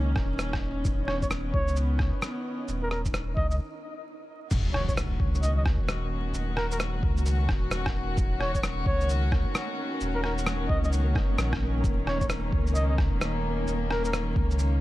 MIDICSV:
0, 0, Header, 1, 7, 480
1, 0, Start_track
1, 0, Key_signature, -6, "minor"
1, 0, Tempo, 458015
1, 888, Time_signature, 4, 2, 24, 8
1, 15518, End_track
2, 0, Start_track
2, 0, Title_t, "Muted trumpet"
2, 0, Program_c, 0, 59
2, 1119, Note_on_c, 0, 73, 82
2, 1220, Note_off_c, 0, 73, 0
2, 1281, Note_on_c, 0, 73, 77
2, 1337, Note_off_c, 0, 73, 0
2, 1618, Note_on_c, 0, 73, 90
2, 1868, Note_off_c, 0, 73, 0
2, 2963, Note_on_c, 0, 70, 85
2, 3017, Note_off_c, 0, 70, 0
2, 3053, Note_on_c, 0, 70, 71
2, 3147, Note_off_c, 0, 70, 0
2, 3524, Note_on_c, 0, 75, 85
2, 3623, Note_off_c, 0, 75, 0
2, 3667, Note_on_c, 0, 75, 73
2, 3730, Note_off_c, 0, 75, 0
2, 4960, Note_on_c, 0, 73, 84
2, 5061, Note_off_c, 0, 73, 0
2, 5115, Note_on_c, 0, 73, 75
2, 5174, Note_off_c, 0, 73, 0
2, 5683, Note_on_c, 0, 75, 84
2, 5782, Note_off_c, 0, 75, 0
2, 5838, Note_on_c, 0, 75, 75
2, 5895, Note_off_c, 0, 75, 0
2, 6883, Note_on_c, 0, 70, 87
2, 6982, Note_off_c, 0, 70, 0
2, 7044, Note_on_c, 0, 70, 74
2, 7098, Note_off_c, 0, 70, 0
2, 8808, Note_on_c, 0, 73, 89
2, 8904, Note_off_c, 0, 73, 0
2, 8960, Note_on_c, 0, 73, 77
2, 9016, Note_off_c, 0, 73, 0
2, 9286, Note_on_c, 0, 73, 93
2, 9542, Note_off_c, 0, 73, 0
2, 10638, Note_on_c, 0, 70, 89
2, 10695, Note_off_c, 0, 70, 0
2, 10727, Note_on_c, 0, 70, 75
2, 10824, Note_off_c, 0, 70, 0
2, 11204, Note_on_c, 0, 75, 88
2, 11303, Note_off_c, 0, 75, 0
2, 11363, Note_on_c, 0, 75, 76
2, 11418, Note_off_c, 0, 75, 0
2, 12647, Note_on_c, 0, 73, 84
2, 12744, Note_off_c, 0, 73, 0
2, 12789, Note_on_c, 0, 73, 74
2, 12851, Note_off_c, 0, 73, 0
2, 13365, Note_on_c, 0, 75, 85
2, 13463, Note_off_c, 0, 75, 0
2, 13514, Note_on_c, 0, 75, 76
2, 13573, Note_off_c, 0, 75, 0
2, 14573, Note_on_c, 0, 70, 85
2, 14667, Note_off_c, 0, 70, 0
2, 14722, Note_on_c, 0, 70, 76
2, 14777, Note_off_c, 0, 70, 0
2, 15518, End_track
3, 0, Start_track
3, 0, Title_t, "Synth texture"
3, 0, Program_c, 1, 99
3, 0, Note_on_c, 1, 63, 76
3, 0, Note_on_c, 1, 75, 77
3, 3761, Note_off_c, 1, 75, 0
3, 3762, Note_off_c, 1, 63, 0
3, 4731, Note_on_c, 1, 70, 79
3, 4741, Note_on_c, 1, 58, 79
3, 15518, Note_off_c, 1, 58, 0
3, 15518, Note_off_c, 1, 70, 0
3, 15518, End_track
4, 0, Start_track
4, 0, Title_t, "String section"
4, 0, Program_c, 2, 48
4, 0, Note_on_c, 2, 51, 74
4, 0, Note_on_c, 2, 58, 74
4, 0, Note_on_c, 2, 61, 88
4, 848, Note_off_c, 2, 58, 0
4, 891, Note_on_c, 2, 59, 74
4, 3726, Note_off_c, 2, 61, 0
4, 3727, Note_off_c, 2, 51, 0
4, 3740, Note_off_c, 2, 59, 0
4, 4726, Note_on_c, 2, 51, 83
4, 4728, Note_on_c, 2, 66, 90
4, 4729, Note_on_c, 2, 61, 76
4, 12366, Note_off_c, 2, 66, 0
4, 12407, Note_on_c, 2, 58, 75
4, 15518, Note_off_c, 2, 51, 0
4, 15518, Note_off_c, 2, 58, 0
4, 15518, Note_off_c, 2, 61, 0
4, 15518, End_track
5, 0, Start_track
5, 0, Title_t, "Sub bass"
5, 0, Program_c, 3, 38
5, 0, Note_on_c, 3, 37, 83
5, 157, Note_off_c, 3, 37, 0
5, 169, Note_on_c, 3, 27, 90
5, 877, Note_off_c, 3, 27, 0
5, 891, Note_on_c, 3, 27, 97
5, 1598, Note_off_c, 3, 27, 0
5, 1613, Note_on_c, 3, 37, 82
5, 2222, Note_off_c, 3, 37, 0
5, 2813, Note_on_c, 3, 27, 96
5, 3519, Note_off_c, 3, 27, 0
5, 3532, Note_on_c, 3, 37, 85
5, 3770, Note_off_c, 3, 37, 0
5, 4730, Note_on_c, 3, 27, 98
5, 5437, Note_off_c, 3, 27, 0
5, 5449, Note_on_c, 3, 37, 86
5, 6060, Note_off_c, 3, 37, 0
5, 6077, Note_on_c, 3, 27, 88
5, 6635, Note_off_c, 3, 27, 0
5, 6652, Note_on_c, 3, 27, 98
5, 7358, Note_off_c, 3, 27, 0
5, 7368, Note_on_c, 3, 37, 88
5, 7836, Note_off_c, 3, 37, 0
5, 7849, Note_on_c, 3, 27, 95
5, 8557, Note_off_c, 3, 27, 0
5, 8567, Note_on_c, 3, 27, 97
5, 9276, Note_off_c, 3, 27, 0
5, 9287, Note_on_c, 3, 37, 81
5, 9899, Note_off_c, 3, 37, 0
5, 10491, Note_on_c, 3, 27, 99
5, 11198, Note_off_c, 3, 27, 0
5, 11209, Note_on_c, 3, 37, 86
5, 11683, Note_off_c, 3, 37, 0
5, 11689, Note_on_c, 3, 30, 80
5, 11914, Note_off_c, 3, 30, 0
5, 11929, Note_on_c, 3, 34, 98
5, 12397, Note_off_c, 3, 34, 0
5, 12410, Note_on_c, 3, 27, 96
5, 13117, Note_off_c, 3, 27, 0
5, 13128, Note_on_c, 3, 37, 87
5, 13739, Note_off_c, 3, 37, 0
5, 13760, Note_on_c, 3, 27, 91
5, 14317, Note_off_c, 3, 27, 0
5, 14328, Note_on_c, 3, 27, 101
5, 15036, Note_off_c, 3, 27, 0
5, 15052, Note_on_c, 3, 37, 86
5, 15518, Note_off_c, 3, 37, 0
5, 15518, End_track
6, 0, Start_track
6, 0, Title_t, "Impact"
6, 0, Program_c, 4, 103
6, 4726, Note_on_c, 4, 60, 76
6, 6647, Note_off_c, 4, 60, 0
6, 15518, End_track
7, 0, Start_track
7, 0, Title_t, "Drums"
7, 164, Note_on_c, 9, 37, 48
7, 169, Note_on_c, 9, 36, 98
7, 269, Note_off_c, 9, 37, 0
7, 273, Note_off_c, 9, 36, 0
7, 408, Note_on_c, 9, 37, 94
7, 408, Note_on_c, 9, 82, 50
7, 512, Note_off_c, 9, 37, 0
7, 512, Note_off_c, 9, 82, 0
7, 558, Note_on_c, 9, 37, 62
7, 561, Note_on_c, 9, 36, 55
7, 663, Note_off_c, 9, 37, 0
7, 666, Note_off_c, 9, 36, 0
7, 890, Note_on_c, 9, 82, 53
7, 891, Note_on_c, 9, 36, 110
7, 995, Note_off_c, 9, 36, 0
7, 995, Note_off_c, 9, 82, 0
7, 1130, Note_on_c, 9, 37, 53
7, 1235, Note_off_c, 9, 37, 0
7, 1282, Note_on_c, 9, 36, 55
7, 1283, Note_on_c, 9, 82, 52
7, 1370, Note_off_c, 9, 82, 0
7, 1370, Note_on_c, 9, 37, 99
7, 1370, Note_on_c, 9, 82, 53
7, 1387, Note_off_c, 9, 36, 0
7, 1475, Note_off_c, 9, 37, 0
7, 1475, Note_off_c, 9, 82, 0
7, 1612, Note_on_c, 9, 36, 96
7, 1717, Note_off_c, 9, 36, 0
7, 1760, Note_on_c, 9, 82, 29
7, 1848, Note_off_c, 9, 82, 0
7, 1848, Note_on_c, 9, 82, 51
7, 1953, Note_off_c, 9, 82, 0
7, 2086, Note_on_c, 9, 37, 49
7, 2092, Note_on_c, 9, 36, 97
7, 2191, Note_off_c, 9, 37, 0
7, 2196, Note_off_c, 9, 36, 0
7, 2329, Note_on_c, 9, 37, 99
7, 2329, Note_on_c, 9, 82, 51
7, 2434, Note_off_c, 9, 37, 0
7, 2434, Note_off_c, 9, 82, 0
7, 2811, Note_on_c, 9, 82, 54
7, 2916, Note_off_c, 9, 82, 0
7, 3051, Note_on_c, 9, 37, 58
7, 3155, Note_off_c, 9, 37, 0
7, 3201, Note_on_c, 9, 82, 52
7, 3203, Note_on_c, 9, 36, 56
7, 3291, Note_off_c, 9, 82, 0
7, 3291, Note_on_c, 9, 37, 101
7, 3291, Note_on_c, 9, 82, 55
7, 3308, Note_off_c, 9, 36, 0
7, 3396, Note_off_c, 9, 37, 0
7, 3396, Note_off_c, 9, 82, 0
7, 3531, Note_on_c, 9, 36, 94
7, 3636, Note_off_c, 9, 36, 0
7, 3679, Note_on_c, 9, 82, 30
7, 3783, Note_off_c, 9, 82, 0
7, 4725, Note_on_c, 9, 49, 103
7, 4725, Note_on_c, 9, 82, 57
7, 4729, Note_on_c, 9, 36, 115
7, 4830, Note_off_c, 9, 49, 0
7, 4830, Note_off_c, 9, 82, 0
7, 4834, Note_off_c, 9, 36, 0
7, 4970, Note_on_c, 9, 37, 53
7, 5075, Note_off_c, 9, 37, 0
7, 5120, Note_on_c, 9, 36, 61
7, 5123, Note_on_c, 9, 82, 55
7, 5213, Note_off_c, 9, 82, 0
7, 5213, Note_on_c, 9, 37, 101
7, 5213, Note_on_c, 9, 82, 60
7, 5225, Note_off_c, 9, 36, 0
7, 5318, Note_off_c, 9, 37, 0
7, 5318, Note_off_c, 9, 82, 0
7, 5448, Note_on_c, 9, 36, 100
7, 5553, Note_off_c, 9, 36, 0
7, 5605, Note_on_c, 9, 82, 33
7, 5691, Note_off_c, 9, 82, 0
7, 5691, Note_on_c, 9, 82, 60
7, 5795, Note_off_c, 9, 82, 0
7, 5927, Note_on_c, 9, 37, 55
7, 5928, Note_on_c, 9, 36, 104
7, 6032, Note_off_c, 9, 36, 0
7, 6032, Note_off_c, 9, 37, 0
7, 6167, Note_on_c, 9, 37, 100
7, 6167, Note_on_c, 9, 82, 55
7, 6272, Note_off_c, 9, 37, 0
7, 6272, Note_off_c, 9, 82, 0
7, 6647, Note_on_c, 9, 82, 59
7, 6751, Note_off_c, 9, 82, 0
7, 6883, Note_on_c, 9, 37, 53
7, 6988, Note_off_c, 9, 37, 0
7, 7039, Note_on_c, 9, 82, 53
7, 7126, Note_off_c, 9, 82, 0
7, 7126, Note_on_c, 9, 37, 110
7, 7126, Note_on_c, 9, 82, 59
7, 7230, Note_off_c, 9, 37, 0
7, 7230, Note_off_c, 9, 82, 0
7, 7367, Note_on_c, 9, 36, 106
7, 7472, Note_off_c, 9, 36, 0
7, 7518, Note_on_c, 9, 82, 32
7, 7607, Note_off_c, 9, 82, 0
7, 7607, Note_on_c, 9, 82, 60
7, 7711, Note_off_c, 9, 82, 0
7, 7847, Note_on_c, 9, 37, 53
7, 7848, Note_on_c, 9, 36, 107
7, 7951, Note_off_c, 9, 37, 0
7, 7952, Note_off_c, 9, 36, 0
7, 8083, Note_on_c, 9, 37, 105
7, 8083, Note_on_c, 9, 82, 58
7, 8188, Note_off_c, 9, 37, 0
7, 8188, Note_off_c, 9, 82, 0
7, 8236, Note_on_c, 9, 37, 66
7, 8238, Note_on_c, 9, 36, 65
7, 8341, Note_off_c, 9, 37, 0
7, 8343, Note_off_c, 9, 36, 0
7, 8566, Note_on_c, 9, 82, 55
7, 8567, Note_on_c, 9, 36, 126
7, 8671, Note_off_c, 9, 36, 0
7, 8671, Note_off_c, 9, 82, 0
7, 8808, Note_on_c, 9, 37, 51
7, 8913, Note_off_c, 9, 37, 0
7, 8959, Note_on_c, 9, 36, 63
7, 8959, Note_on_c, 9, 82, 55
7, 9049, Note_off_c, 9, 82, 0
7, 9049, Note_on_c, 9, 37, 109
7, 9049, Note_on_c, 9, 82, 58
7, 9064, Note_off_c, 9, 36, 0
7, 9154, Note_off_c, 9, 37, 0
7, 9154, Note_off_c, 9, 82, 0
7, 9287, Note_on_c, 9, 36, 113
7, 9392, Note_off_c, 9, 36, 0
7, 9441, Note_on_c, 9, 82, 32
7, 9529, Note_off_c, 9, 82, 0
7, 9529, Note_on_c, 9, 82, 57
7, 9634, Note_off_c, 9, 82, 0
7, 9768, Note_on_c, 9, 36, 110
7, 9768, Note_on_c, 9, 37, 49
7, 9872, Note_off_c, 9, 36, 0
7, 9873, Note_off_c, 9, 37, 0
7, 10008, Note_on_c, 9, 37, 107
7, 10008, Note_on_c, 9, 82, 54
7, 10113, Note_off_c, 9, 37, 0
7, 10113, Note_off_c, 9, 82, 0
7, 10487, Note_on_c, 9, 82, 54
7, 10592, Note_off_c, 9, 82, 0
7, 10728, Note_on_c, 9, 37, 50
7, 10833, Note_off_c, 9, 37, 0
7, 10881, Note_on_c, 9, 82, 53
7, 10968, Note_off_c, 9, 82, 0
7, 10968, Note_on_c, 9, 37, 110
7, 10968, Note_on_c, 9, 82, 53
7, 11073, Note_off_c, 9, 37, 0
7, 11073, Note_off_c, 9, 82, 0
7, 11209, Note_on_c, 9, 36, 108
7, 11314, Note_off_c, 9, 36, 0
7, 11361, Note_on_c, 9, 82, 29
7, 11452, Note_off_c, 9, 82, 0
7, 11452, Note_on_c, 9, 82, 57
7, 11557, Note_off_c, 9, 82, 0
7, 11689, Note_on_c, 9, 36, 108
7, 11693, Note_on_c, 9, 37, 50
7, 11794, Note_off_c, 9, 36, 0
7, 11798, Note_off_c, 9, 37, 0
7, 11930, Note_on_c, 9, 37, 109
7, 11930, Note_on_c, 9, 82, 56
7, 12035, Note_off_c, 9, 37, 0
7, 12035, Note_off_c, 9, 82, 0
7, 12080, Note_on_c, 9, 36, 63
7, 12081, Note_on_c, 9, 37, 63
7, 12185, Note_off_c, 9, 36, 0
7, 12185, Note_off_c, 9, 37, 0
7, 12408, Note_on_c, 9, 36, 117
7, 12410, Note_on_c, 9, 82, 55
7, 12512, Note_off_c, 9, 36, 0
7, 12515, Note_off_c, 9, 82, 0
7, 12651, Note_on_c, 9, 37, 50
7, 12756, Note_off_c, 9, 37, 0
7, 12799, Note_on_c, 9, 36, 59
7, 12799, Note_on_c, 9, 82, 50
7, 12887, Note_off_c, 9, 82, 0
7, 12887, Note_on_c, 9, 37, 107
7, 12887, Note_on_c, 9, 82, 53
7, 12903, Note_off_c, 9, 36, 0
7, 12992, Note_off_c, 9, 37, 0
7, 12992, Note_off_c, 9, 82, 0
7, 13127, Note_on_c, 9, 36, 99
7, 13232, Note_off_c, 9, 36, 0
7, 13278, Note_on_c, 9, 82, 29
7, 13365, Note_off_c, 9, 82, 0
7, 13365, Note_on_c, 9, 82, 55
7, 13470, Note_off_c, 9, 82, 0
7, 13606, Note_on_c, 9, 36, 109
7, 13606, Note_on_c, 9, 37, 50
7, 13710, Note_off_c, 9, 37, 0
7, 13711, Note_off_c, 9, 36, 0
7, 13847, Note_on_c, 9, 37, 105
7, 13847, Note_on_c, 9, 82, 54
7, 13952, Note_off_c, 9, 37, 0
7, 13952, Note_off_c, 9, 82, 0
7, 14333, Note_on_c, 9, 82, 53
7, 14438, Note_off_c, 9, 82, 0
7, 14573, Note_on_c, 9, 37, 53
7, 14677, Note_off_c, 9, 37, 0
7, 14723, Note_on_c, 9, 82, 51
7, 14813, Note_off_c, 9, 82, 0
7, 14813, Note_on_c, 9, 37, 102
7, 14813, Note_on_c, 9, 82, 55
7, 14918, Note_off_c, 9, 37, 0
7, 14918, Note_off_c, 9, 82, 0
7, 15050, Note_on_c, 9, 36, 99
7, 15155, Note_off_c, 9, 36, 0
7, 15205, Note_on_c, 9, 82, 30
7, 15290, Note_off_c, 9, 82, 0
7, 15290, Note_on_c, 9, 82, 53
7, 15395, Note_off_c, 9, 82, 0
7, 15518, End_track
0, 0, End_of_file